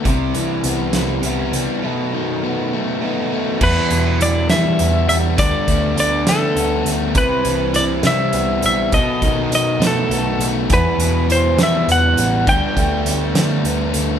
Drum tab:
CC |------|------|x-----|------|
HH |xxxxxx|------|-xxxxx|xxxxxx|
SD |---o--|------|---o--|---o--|
BD |o-----|------|o-----|oo----|

CC |------|------|------|------|
HH |xxxxxx|xxxxxx|xxxxxx|xxxxxx|
SD |---o--|---o--|---o--|---o--|
BD |o-----|oo----|o-----|oo----|